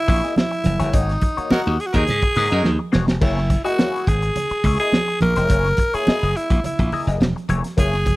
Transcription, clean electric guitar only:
0.07 0.21 A#3 medium
0.07 0.22 E4 medium
0.07 0.22 G#4 medium
0.07 0.22 C#5 medium
0.23 0.35 A#3 medium
0.23 0.35 E4 medium
0.23 0.35 G#4 medium
0.23 0.35 D#5 medium
0.51 muted clean electric guitar stroke medium
0.80 0.92 A#3 medium
0.80 0.93 E4 medium
0.80 0.93 G#4 medium
0.80 0.93 C#5 medium
0.93 1.10 A#3 medium
0.93 1.11 D#4 loud
0.93 1.11 F#4 medium
0.93 1.11 C#5 loud
1.22 muted clean electric guitar stroke medium
1.37 1.50 A#3 medium
1.37 1.50 D#4 medium
1.37 1.49 F#4 medium
1.37 1.49 C#5 medium
1.51 1.77 A#3 medium
1.51 1.77 D#4 medium
1.51 1.77 F#4 loud
1.51 1.78 D#5 medium
1.79 muted clean electric guitar stroke soft
1.93 muted clean electric guitar stroke soft
2.08 muted clean electric guitar stroke soft
2.23 muted clean electric guitar stroke soft
2.36 2.50 A#3 medium
2.36 2.50 D#4 medium
2.36 2.50 F#4 medium
2.36 2.49 D#5 medium
2.50 2.63 A#3 medium
2.50 2.63 D#4 medium
2.50 2.63 F#4 medium
2.50 2.63 D#5 medium
2.64 muted clean electric guitar stroke soft
2.79 muted clean electric guitar stroke medium
2.92 3.10 A#3 medium
2.92 3.07 D#4 medium
2.92 3.07 F#4 medium
2.92 3.06 C#5 medium
3.07 muted clean electric guitar stroke soft
3.21 3.38 A#3 medium
3.21 3.39 E4 medium
3.21 3.39 G#4 medium
3.21 3.39 C#5 medium
3.50 muted clean electric guitar stroke soft
3.65 3.77 A#3 medium
3.65 3.77 E4 medium
3.65 3.77 G#4 medium
3.65 3.77 D#5 medium
3.79 4.05 A#3 medium
3.79 4.05 E4 medium
3.79 4.05 G#4 medium
3.79 4.06 C#5 medium
4.08 muted clean electric guitar stroke soft
4.22 muted clean electric guitar stroke soft
4.36 muted clean electric guitar stroke soft
4.51 muted clean electric guitar stroke soft
4.65 4.78 A#3 medium
4.65 4.78 E4 medium
4.65 4.79 G#4 medium
4.65 4.79 C#5 medium
4.80 4.92 A#3 medium
4.80 4.92 E4 medium
4.80 4.92 G#4 medium
4.80 4.92 D#5 medium
5.08 muted clean electric guitar stroke medium
5.37 5.49 A#3 medium
5.37 5.49 E4 medium
5.37 5.49 G#4 medium
5.37 5.50 C#5 medium
5.50 5.67 A#3 medium
5.50 5.67 E4 medium
5.50 5.67 G#4 medium
5.50 5.67 C#5 loud
5.79 muted clean electric guitar stroke medium
5.94 6.06 A#3 medium
5.94 6.06 E4 medium
5.94 6.06 G#4 medium
5.94 6.06 C#5 medium
6.07 6.34 A#3 medium
6.07 6.34 E4 medium
6.07 6.34 G#4 medium
6.07 6.34 D#5 medium
6.50 muted clean electric guitar stroke soft
6.64 muted clean electric guitar stroke soft
6.79 muted clean electric guitar stroke medium
6.92 7.06 A#3 medium
6.92 7.06 E4 medium
6.92 7.06 G#4 medium
6.92 7.06 D#5 medium
7.07 7.20 A#3 medium
7.07 7.20 E4 medium
7.07 7.20 G#4 medium
7.07 7.19 D#5 medium
7.36 muted clean electric guitar stroke soft
7.49 7.66 A#3 medium
7.49 7.64 E4 medium
7.49 7.64 G#4 loud
7.49 7.63 C#5 medium
7.64 muted clean electric guitar stroke soft
7.77 7.95 A#3 loud
7.77 7.95 E4 loud
7.77 7.95 G#4 loud
7.77 7.95 C#5 medium
8.06 muted clean electric guitar stroke soft

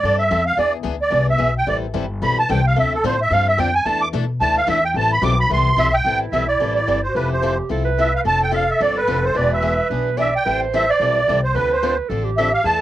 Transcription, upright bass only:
0.03 0.30 G2 medium
0.31 0.56 F2 loud
0.57 0.84 E2 medium
0.84 1.11 D2 medium
1.12 1.39 C2 medium
1.40 1.66 B1 medium
1.67 1.94 A1 medium
1.94 2.21 G1 medium
2.22 2.48 B1 medium
2.50 2.76 C2 loud
2.76 3.03 D2 medium
3.03 3.30 A2 loud
3.31 3.57 G2 medium
3.58 3.85 F2 loud
3.85 4.12 E2 medium
4.13 4.40 B2 medium
4.40 4.67 D2 medium
4.68 4.94 E2 loud
4.94 5.21 A1 medium
5.22 5.49 B1 loud
5.50 5.76 C2 medium
5.77 6.04 B1 loud
6.05 6.27 A1 medium
6.32 6.56 B1 medium
6.60 6.83 A1 medium
6.88 7.11 G1 medium
7.15 7.59 F1 medium
7.70 8.14 C2 medium
8.25 8.69 F1 medium
8.80 9.04 G1 medium
9.08 9.31 F1 medium
9.35 9.79 E1 medium
9.90 10.34 B1 medium
10.46 10.90 A1 medium
11.00 11.23 B1 medium
11.28 11.52 C2 medium
11.55 11.99 D2 medium
12.10 12.54 A1 medium
12.64 12.81 E2 medium

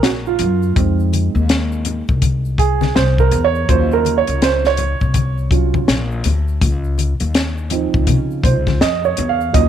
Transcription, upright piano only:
0.03 0.09 F#4 medium
0.27 0.96 F4 medium
0.76 3.65 G#3 soft
0.76 3.65 C4 soft
0.76 3.65 D#4 medium
2.59 2.97 G#4 medium
2.95 3.21 C5 loud
3.20 3.45 A#4 medium
3.44 3.67 C#5 loud
3.68 5.50 F#3 medium
3.68 5.50 C#4 soft
3.68 5.51 F4 medium
3.68 3.94 C5 medium
3.93 4.16 A#4 medium
4.18 4.43 C#5 medium
4.43 4.67 C5 loud
4.67 5.36 C#5 loud
5.52 5.85 F#3 medium
5.52 5.85 C#4 soft
5.52 5.85 F4 medium
7.71 8.77 F3 medium
7.71 8.77 C4 soft
7.71 8.77 D#4 medium
8.44 8.82 C5 medium
8.81 9.06 D#5 medium
9.05 9.30 C#5 medium
9.29 9.55 F5 medium
9.53 9.69 F#3 medium
9.53 9.69 C#4 medium
9.53 9.69 F4 medium
9.53 9.69 D#5 loud

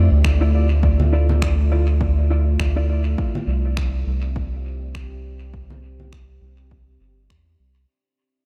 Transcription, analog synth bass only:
0.12 2.57 D2 loud
2.59 3.16 D2 medium
3.47 4.04 C2 medium
4.07 6.39 C2 medium
6.41 6.98 C2 medium
7.00 7.32 G1 medium
7.30 7.56 E2 medium
7.59 7.86 C2 medium

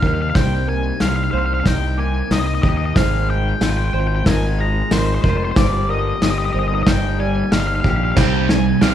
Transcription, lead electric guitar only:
0.07 0.14 F5 medium
0.14 0.21 F5 medium
0.22 0.29 F5 medium
0.30 0.36 F5 medium
0.36 0.68 G5 medium
0.69 1.01 G#5 medium
1.01 1.08 F5 medium
1.08 1.16 F5 medium
1.16 1.23 F5 medium
1.24 1.31 F5 medium
1.31 1.38 F5 medium
1.38 1.45 F5 medium
1.46 1.53 F5 medium
1.54 1.60 F5 medium
1.60 1.67 F5 medium
1.67 1.99 G5 medium
1.99 2.32 G#5 medium
2.32 2.39 D#5 medium
2.40 2.46 D#5 medium
2.47 2.54 D#5 medium
2.55 2.62 D#5 medium
2.62 2.68 D#5 medium
2.69 2.76 D#5 medium
2.77 2.85 D#5 medium
2.86 2.93 D#5 medium
2.97 3.30 F5 medium
3.30 3.61 G5 medium
3.62 3.69 G5 loud
3.70 3.77 G5 medium
3.77 3.85 G5 medium
3.85 3.93 G5 medium
3.93 3.99 G5 medium
4.00 4.07 G5 medium
4.07 4.15 G5 medium
4.15 4.23 G5 medium
4.28 4.61 G#5 medium
4.61 4.90 A#5 medium
4.92 4.99 C5 medium
4.99 5.06 C5 medium
5.06 5.14 C5 medium
5.15 5.22 C5 medium
5.22 5.29 C5 medium
5.30 5.37 C5 medium
5.37 5.44 C5 medium
5.44 5.51 C5 medium
5.51 5.57 C5 medium
5.57 5.90 D5 medium
5.90 6.22 D#5 medium
6.23 6.30 D#5 medium
6.31 6.38 D#5 medium
6.38 6.45 D#5 medium
6.45 6.52 D#5 medium
6.53 6.59 D#5 medium
6.59 6.66 D#5 medium
6.68 6.74 D#5 medium
6.75 6.82 D#5 medium
6.83 6.90 D#5 medium
6.88 7.20 G5 medium
7.20 7.52 G#5 medium
7.53 7.59 F5 medium
7.60 7.67 F5 medium
7.67 7.75 F5 medium
7.75 7.81 F5 medium
7.81 7.88 F5 medium
7.90 7.96 F5 medium
7.97 8.04 F5 medium
8.04 8.11 F5 medium
8.12 8.17 F5 medium
8.17 8.47 G5 medium
8.50 8.82 G#5 medium
8.82 8.89 F5 medium
8.90 8.94 F5 medium

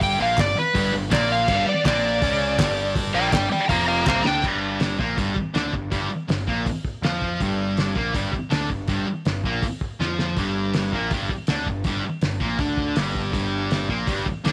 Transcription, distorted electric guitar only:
0.00 0.19 G2 medium
0.00 0.19 G3 loud
0.19 0.37 A#2 medium
0.19 0.38 A#3 loud
0.37 0.53 G2 medium
0.56 muted distorted electric guitar stroke medium
0.74 0.92 G2 medium
0.74 0.93 G3 loud
0.93 1.08 G2 medium
1.10 1.48 A#2 medium
1.10 1.48 A#3 loud
1.49 1.66 G2 medium
1.49 1.67 G3 loud
1.67 muted distorted electric guitar stroke medium
1.84 2.21 A#2 loud
1.84 2.22 A#3 loud
2.22 2.58 C#3 medium
2.22 2.59 C#4 loud
2.58 3.13 G2 medium
2.58 3.14 G3 loud
3.13 3.32 A#2 medium
3.13 3.32 A#3 loud
3.31 3.47 G2 medium
3.50 muted distorted electric guitar stroke medium
3.68 4.06 F2 medium
3.68 4.06 F3 loud
4.05 4.23 C3 medium
4.05 4.24 C4 loud
4.24 4.42 D3 medium
4.24 4.43 D4 loud
4.43 4.98 G2 medium
4.43 4.99 G3 medium
4.99 5.17 A#2 medium
4.99 5.17 A#3 loud
5.16 5.34 G2 medium
5.16 5.36 G3 medium
5.35 muted distorted electric guitar stroke medium
5.54 5.73 D3 medium
5.54 5.73 D4 medium
5.72 5.88 G2 medium
5.90 6.09 G2 medium
5.90 6.10 G3 medium
6.10 muted distorted electric guitar stroke medium
6.28 6.43 G2 medium
6.47 6.65 A#2 medium
6.47 6.66 A#3 medium
6.67 muted distorted electric guitar stroke medium
7.03 7.40 F3 medium
7.03 7.40 F4 medium
7.41 7.96 G2 medium
7.41 7.96 G3 medium
7.95 8.14 A#2 medium
7.95 8.14 A#3 loud
8.14 8.32 G2 medium
8.14 8.33 G3 medium
8.33 muted distorted electric guitar stroke soft
8.50 8.69 D3 medium
8.50 8.70 D4 loud
8.70 8.85 G2 medium
8.88 9.06 G2 medium
8.88 9.07 G3 medium
9.07 muted distorted electric guitar stroke medium
9.26 9.41 G2 medium
9.45 9.63 A#2 medium
9.45 9.63 A#3 loud
9.63 muted distorted electric guitar stroke medium
10.00 10.37 F3 medium
10.00 10.37 F4 medium
10.37 10.92 G2 medium
10.37 10.93 G3 medium
10.92 11.11 A#2 medium
10.92 11.11 A#3 medium
11.11 11.29 G2 medium
11.11 11.30 G3 medium
11.31 muted distorted electric guitar stroke medium
11.48 11.67 D3 medium
11.48 11.67 D4 medium
11.68 11.82 G2 medium
11.85 12.03 G2 medium
11.85 12.04 G3 medium
12.05 muted distorted electric guitar stroke soft
12.22 12.37 G2 medium
12.40 12.59 A#2 medium
12.40 12.59 A#3 medium
12.59 12.96 D3 medium
12.59 12.97 D4 medium
12.97 13.31 G2 medium
12.97 13.32 G3 loud
13.32 13.88 G2 medium
13.32 13.89 G3 medium
13.89 14.07 A#2 medium
13.89 14.07 A#3 medium
14.07 14.25 G2 medium
14.07 14.26 G3 medium
14.26 muted distorted electric guitar stroke soft
14.44 14.52 D3 medium
14.44 14.52 D4 medium

